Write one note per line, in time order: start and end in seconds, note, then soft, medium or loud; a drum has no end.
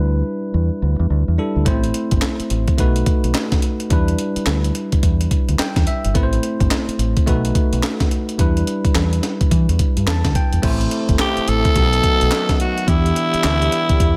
0.00 0.21 D2 medium
0.00 1.34 G3 medium
0.00 1.34 D4 medium
0.00 1.35 E4 medium
0.00 1.35 B4 medium
0.54 0.69 E2 medium
0.82 0.97 D2 medium
0.99 1.08 E2 medium
1.10 1.25 D2 medium
1.28 1.37 E2 medium
1.38 1.66 G3 medium
1.38 1.66 D4 medium
1.38 1.66 E4 medium
1.38 1.67 A4 medium
1.56 1.68 D2 medium
1.65 1.90 A1 medium
1.65 2.76 A3 medium
1.65 2.76 C4 medium
1.65 2.76 E4 medium
1.65 2.77 C5 medium
1.65 kick loud
1.65 closed hi-hat medium
1.84 closed hi-hat soft
1.94 closed hi-hat medium
2.11 2.21 G1 medium
2.11 kick medium
2.11 closed hi-hat medium
2.22 snare loud
2.22 clap medium
2.22 closed hi-hat medium
2.40 muted fingered electric bass stroke soft
2.40 closed hi-hat soft
2.50 2.65 A1 medium
2.50 closed hi-hat medium
2.68 kick loud
2.68 closed hi-hat soft
2.78 3.02 B1 loud
2.78 3.88 A3 medium
2.78 3.88 D#4 medium
2.78 3.89 F#4 medium
2.78 3.89 B4 medium
2.78 kick medium
2.78 closed hi-hat medium
2.96 closed hi-hat medium
3.06 kick loud
3.06 closed hi-hat medium
3.24 3.33 B1 medium
3.24 closed hi-hat medium
3.34 snare loud
3.34 clap medium
3.34 closed hi-hat medium
3.52 kick loud
3.52 snare medium
3.52 closed hi-hat soft
3.62 closed hi-hat medium
3.80 closed hi-hat medium
3.90 4.14 E2 medium
3.90 6.11 G3 medium
3.90 6.11 D4 medium
3.90 6.12 E4 medium
3.90 6.12 B4 medium
3.90 kick loud
3.90 closed hi-hat medium
4.08 closed hi-hat soft
4.19 closed hi-hat medium
4.36 muted fingered electric bass stroke soft
4.36 closed hi-hat medium
4.46 4.70 D2 medium
4.46 snare loud
4.46 clap medium
4.46 closed hi-hat medium
4.64 closed hi-hat soft
4.75 closed hi-hat medium
4.92 kick loud
4.92 closed hi-hat soft
5.03 5.26 E2 medium
5.03 kick medium
5.03 closed hi-hat medium
5.21 closed hi-hat medium
5.31 kick medium
5.31 closed hi-hat medium
5.49 5.57 D2 medium
5.49 closed hi-hat medium
5.59 5.85 G5 medium
5.59 snare loud
5.59 clap medium
5.59 closed hi-hat medium
5.76 5.85 E2 medium
5.76 kick loud
5.76 snare medium
5.76 closed hi-hat medium
5.87 6.13 E5 medium
5.87 closed hi-hat medium
6.04 6.13 G1 medium
6.04 closed hi-hat medium
6.14 6.38 A1 loud
6.14 7.25 A3 medium
6.14 7.25 C4 medium
6.14 7.25 E4 medium
6.14 6.24 B4 medium
6.14 kick loud
6.14 closed hi-hat medium
6.23 7.29 C5 medium
6.33 closed hi-hat soft
6.43 closed hi-hat medium
6.60 6.69 G1 medium
6.60 kick medium
6.60 closed hi-hat soft
6.71 snare loud
6.71 clap medium
6.71 closed hi-hat medium
6.88 muted fingered electric bass stroke soft
6.88 closed hi-hat soft
6.99 7.13 A1 medium
6.99 closed hi-hat medium
7.17 kick loud
7.17 closed hi-hat soft
7.26 7.51 B1 loud
7.26 8.37 A3 medium
7.26 8.37 D#4 medium
7.26 8.37 F#4 medium
7.26 8.38 B4 medium
7.26 kick medium
7.26 closed hi-hat medium
7.45 closed hi-hat medium
7.55 kick loud
7.55 closed hi-hat medium
7.73 7.81 B1 medium
7.73 closed hi-hat medium
7.83 snare loud
7.83 clap medium
7.83 closed hi-hat medium
8.00 kick loud
8.00 snare medium
8.00 closed hi-hat soft
8.11 closed hi-hat medium
8.29 closed hi-hat soft
8.38 8.62 E2 loud
8.38 10.59 G3 medium
8.38 10.59 D4 medium
8.38 10.60 E4 medium
8.38 10.60 B4 medium
8.38 kick loud
8.38 closed hi-hat medium
8.57 closed hi-hat soft
8.67 closed hi-hat medium
8.85 muted fingered electric bass stroke soft
8.85 kick loud
8.85 closed hi-hat soft
8.95 9.19 E2 loud
8.95 snare loud
8.95 clap medium
8.95 closed hi-hat medium
9.13 closed hi-hat soft
9.23 snare medium
9.23 closed hi-hat medium
9.41 kick loud
9.41 closed hi-hat soft
9.51 9.66 E3 loud
9.51 kick medium
9.51 closed hi-hat medium
9.69 9.78 E2 medium
9.69 closed hi-hat medium
9.79 kick loud
9.79 closed hi-hat medium
9.97 10.06 G2 medium
9.97 closed hi-hat medium
10.07 10.22 E2 medium
10.07 10.34 A5 medium
10.07 snare loud
10.07 clap medium
10.07 closed hi-hat medium
10.24 10.33 D2 medium
10.24 kick loud
10.24 snare medium
10.24 closed hi-hat medium
10.35 10.62 G5 medium
10.35 kick medium
10.35 closed hi-hat medium
10.53 10.62 E2 medium
10.53 closed hi-hat medium
10.62 10.87 A1 medium
10.62 11.75 C3 medium
10.62 11.74 E3 medium
10.62 11.73 A3 medium
10.62 12.85 A3 medium
10.62 11.73 C4 medium
10.62 11.74 E4 medium
10.62 11.74 A4 medium
10.62 11.74 C5 medium
10.62 kick loud
10.62 closed hi-hat medium
10.62 crash medium
10.81 closed hi-hat soft
10.91 closed hi-hat medium
11.09 11.18 G1 medium
11.09 kick medium
11.09 closed hi-hat medium
11.19 11.50 G4 loud
11.19 snare loud
11.19 clap medium
11.19 closed hi-hat medium
11.37 muted fingered electric bass stroke soft
11.37 closed hi-hat soft
11.48 11.63 A1 loud
11.48 12.60 A4 loud
11.48 closed hi-hat medium
11.65 kick loud
11.65 closed hi-hat soft
11.75 11.99 B1 loud
11.75 12.87 D#3 medium
11.75 12.85 F#3 medium
11.75 12.87 F#3 medium
11.75 14.17 B3 medium
11.75 12.86 B3 medium
11.75 12.86 D#4 medium
11.75 12.87 F#4 medium
11.75 11.85 G4 medium
11.75 kick medium
11.75 closed hi-hat medium
11.84 12.90 A4 medium
11.93 closed hi-hat medium
12.04 kick medium
12.04 closed hi-hat medium
12.21 12.30 B1 medium
12.21 closed hi-hat medium
12.31 snare loud
12.31 clap medium
12.31 closed hi-hat medium
12.49 kick loud
12.49 snare medium
12.49 closed hi-hat medium
12.60 12.90 F#4 medium
12.60 closed hi-hat medium
12.78 closed hi-hat medium
12.87 13.11 E2 medium
12.87 14.17 D3 medium
12.87 14.17 E3 medium
12.87 14.17 G3 medium
12.87 14.17 B3 medium
12.87 14.17 D4 medium
12.87 14.17 E4 medium
12.87 14.17 E4 loud
12.87 14.17 G4 medium
12.87 kick loud
12.87 closed hi-hat medium
13.06 closed hi-hat soft
13.16 closed hi-hat medium
13.34 muted fingered electric bass stroke soft
13.34 closed hi-hat medium
13.44 13.67 D2 loud
13.44 snare loud
13.44 clap medium
13.44 closed hi-hat medium
13.62 closed hi-hat soft
13.72 closed hi-hat medium
13.89 kick loud
13.89 closed hi-hat soft
14.00 14.17 E2 medium
14.00 kick medium
14.00 closed hi-hat medium